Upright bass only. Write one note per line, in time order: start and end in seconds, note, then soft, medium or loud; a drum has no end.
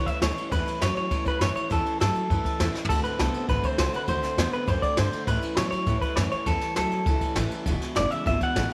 0.21 0.36 D2 loud
0.37 muted upright bass stroke medium
0.52 0.66 E2 loud
0.67 muted upright bass stroke medium
0.82 0.95 F#2 loud
0.96 muted upright bass stroke medium
1.11 1.25 G2 medium
1.26 muted upright bass stroke soft
1.41 1.55 F#2 loud
1.56 muted upright bass stroke medium
1.71 1.85 E2 medium
2.01 2.15 G2 loud
2.30 2.44 F#2 medium
2.60 2.74 E2 medium
2.89 3.04 D2 medium
3.05 muted upright bass stroke medium
3.19 3.33 C2 loud
3.34 muted upright bass stroke medium
3.49 3.63 A1 medium
3.78 3.92 C#2 medium
3.93 muted upright bass stroke medium
4.08 4.21 D2 loud
4.22 muted upright bass stroke medium
4.37 4.52 E2 loud
4.68 4.82 F#2 medium
4.82 muted upright bass stroke medium
4.98 5.12 G2 loud
5.13 muted upright bass stroke medium
5.27 5.41 A2 medium
5.42 muted upright bass stroke medium
5.57 5.71 B2 loud
5.72 muted upright bass stroke medium
5.87 6.01 A2 medium
6.17 6.32 F#2 loud
6.33 muted upright bass stroke medium
6.46 6.61 E2 medium
6.62 muted upright bass stroke medium
6.77 6.91 D2 loud
6.92 muted upright bass stroke soft
7.06 7.20 C#2 medium
7.21 muted upright bass stroke medium
7.35 7.49 A1 medium
7.66 7.79 E1 medium
7.96 8.10 F#1 loud
8.11 muted upright bass stroke medium
8.25 8.40 G#1 loud
8.41 muted upright bass stroke medium
8.55 8.70 A1 loud